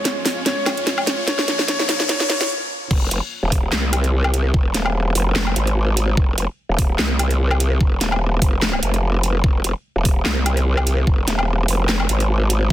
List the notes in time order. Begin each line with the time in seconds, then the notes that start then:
Already playing: F2 G#3 C#4 F4 C#5, riser
0.05 snare, closed hi-hat
0.25 snare, open hi-hat
0.46 C#5, snare, closed hi-hat
0.66 snare, closed hi-hat, low woodblock
0.77 closed hi-hat
0.87 snare, closed hi-hat
0.98 low woodblock
1.07 snare, closed hi-hat
1.27 F3 A#3 C#5, snare, closed hi-hat
1.39 snare
1.48 snare, closed hi-hat
1.59 snare
1.68 C#5, snare, closed hi-hat
1.79 snare
1.89 snare, open hi-hat
2.00 snare
2.09 C#5, snare, closed hi-hat
2.20 snare
2.30 C#5, snare, closed hi-hat
2.41 snare, closed hi-hat
2.91 F1, kick, crash
3.11 F1, closed hi-hat
3.43 D#1
3.52 kick, open hi-hat
3.72 C2, snare, clap
3.93 closed hi-hat, low woodblock
4.04 closed hi-hat
4.24 low woodblock
4.34 closed hi-hat
4.54 F1, kick
4.74 D#1, snare, closed hi-hat
4.86 low woodblock
5.15 F1, open hi-hat
5.36 snare, clap
5.47 low woodblock
5.56 G#1, closed hi-hat
5.67 closed hi-hat
5.97 closed hi-hat
6.17 F1, kick
6.38 F1, closed hi-hat
6.69 D#1
6.79 kick, open hi-hat
6.99 C2, snare, clap
7.19 closed hi-hat, low woodblock
7.31 closed hi-hat
7.51 low woodblock
7.60 closed hi-hat
7.81 kick
8.01 D#1, snare, closed hi-hat
8.12 low woodblock
8.42 F1, kick, open hi-hat
8.62 snare, clap
8.73 low woodblock
8.83 F1, closed hi-hat
8.94 closed hi-hat
9.23 closed hi-hat
9.44 F1, kick
9.64 F1, closed hi-hat
9.96 D#1
10.05 kick, open hi-hat
10.26 C2, snare, clap
10.46 closed hi-hat, low woodblock
10.57 closed hi-hat
10.77 low woodblock
10.87 closed hi-hat
11.07 F1, kick
11.28 D#1, snare, closed hi-hat
11.39 low woodblock
11.68 F1, open hi-hat
11.89 snare, clap
12.00 low woodblock
12.09 G#1, closed hi-hat
12.20 closed hi-hat
12.50 closed hi-hat